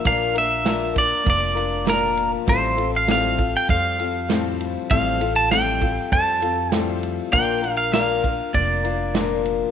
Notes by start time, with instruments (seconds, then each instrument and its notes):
0.04 upright bass A#1, steel-string acoustic guitar A#2 F3 A#3 D4 F4 A#4, clean electric guitar F5, kick, ride
0.34 steel-string acoustic guitar A#3 D4 F4 A#4, clean electric guitar E5, ride
0.64 steel-string acoustic guitar A#2 F3 A#3 D4 F4 A#4, snare, ride
0.94 steel-string acoustic guitar A#3 D4 F4 A#4, clean electric guitar D5, kick, ride
1.24 upright bass F1, steel-string acoustic guitar A#3 D4 F4 A#4, kick, ride
1.30 clean electric guitar D5
1.55 steel-string acoustic guitar A#3 D4 F4 A#4, ride
1.85 steel-string acoustic guitar A#2 F3 A#3 D4 F4 A#4, snare, ride
1.89 clean electric guitar A#4
2.17 ride
2.46 upright bass A1, steel-string acoustic guitar A2 F3 G3 C4 F4 A4, clean electric guitar C5, kick, ride
2.77 steel-string acoustic guitar G3 C4 F4 A4, ride
2.96 clean electric guitar F5
3.07 steel-string acoustic guitar A2 F3 G3 C4 F4 A4, clean electric guitar F5, snare, ride
3.38 steel-string acoustic guitar G3 C4 F4 A4, kick, ride
3.57 clean electric guitar G5
3.68 upright bass F2, steel-string acoustic guitar G3 C4 F4 A4, clean electric guitar F5, kick, ride
3.99 steel-string acoustic guitar G3 C4 F4 A4, ride
4.28 steel-string acoustic guitar A2 F3 G3 C4 F4 A4, snare, ride
4.61 ride
4.90 upright bass A1, steel-string acoustic guitar A2 F3 G3 C4 F4 A4, clean electric guitar F5, kick, ride
5.20 steel-string acoustic guitar G3 C4 F4 A4, ride
5.36 clean electric guitar A5
5.51 steel-string acoustic guitar A2 F3 G3 C4 F4 A4, clean electric guitar G5, snare, ride
5.81 steel-string acoustic guitar G3 C4 F4 A4, kick, ride
6.11 upright bass F2, steel-string acoustic guitar G3 C4 F4 A4, clean electric guitar A5, kick, ride
6.41 steel-string acoustic guitar G3 C4 F4 A4, ride
6.72 steel-string acoustic guitar A2 F3 G3 C4 F4 A4, clean electric guitar G5, snare, ride
7.03 ride
7.31 upright bass A#1, steel-string acoustic guitar A#2 F3 A#3 D4 F4 A#4, clean electric guitar G5, kick, ride
7.62 steel-string acoustic guitar A#3 D4 F4 A#4, ride
7.77 clean electric guitar F5
7.92 steel-string acoustic guitar A#2 F3 A#3 D4 F4 A#4, clean electric guitar F5, snare, ride
8.22 steel-string acoustic guitar A#3 D4 F4 A#4, kick, ride
8.53 upright bass F1, steel-string acoustic guitar A#3 D4 F4 A#4, clean electric guitar D5, kick, ride
8.83 steel-string acoustic guitar A#3 D4 F4 A#4, ride
9.14 steel-string acoustic guitar A#2 F3 A#3 D4 F4 A#4, snare, ride
9.45 ride